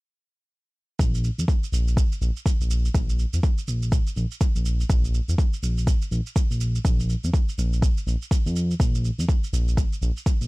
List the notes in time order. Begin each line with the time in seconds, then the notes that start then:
0.99 A#1, kick, shaker
1.15 shaker
1.24 shaker
1.38 F2, shaker
1.48 kick, shaker
1.63 shaker
1.72 A#1, shaker
1.88 shaker
1.97 kick, shaker
2.12 shaker
2.21 A#1, shaker
2.37 shaker
2.46 kick, shaker
2.60 A#1, shaker
2.71 shaker
2.85 shaker
2.94 A#1, kick, shaker
3.09 shaker
3.19 shaker
3.33 F2, shaker
3.43 kick, shaker
3.58 shaker
3.68 A#1, shaker
3.82 shaker
3.92 kick, shaker
4.07 shaker
4.16 A#1, shaker
4.31 shaker
4.41 kick, shaker
4.55 A#1, shaker
4.65 shaker
4.80 shaker
4.90 A#1, kick, shaker
5.05 shaker
5.14 shaker
5.28 F2, shaker
5.38 kick, shaker
5.53 shaker
5.63 A#1, shaker
5.78 shaker
5.87 kick, shaker
6.02 shaker
6.11 A#1, shaker
6.27 shaker
6.36 kick, shaker
6.50 A#1, shaker
6.61 shaker
6.75 shaker
6.85 A#1, kick, shaker
7.00 shaker
7.09 shaker
7.24 F2, shaker
7.34 kick, shaker
7.49 shaker
7.58 A#1, shaker
7.73 shaker
7.82 kick, shaker
7.98 shaker
8.07 A#1, shaker
8.22 shaker
8.31 kick, shaker
8.46 F2, shaker
8.56 shaker
8.71 shaker
8.80 A#1, kick, shaker
8.95 shaker
9.05 shaker
9.18 F2, shaker
9.29 kick, shaker
9.44 shaker
9.53 A#1, shaker
9.68 shaker
9.77 kick, shaker
9.93 shaker
10.02 A#1, shaker
10.17 shaker
10.26 kick, shaker
10.41 A#1, shaker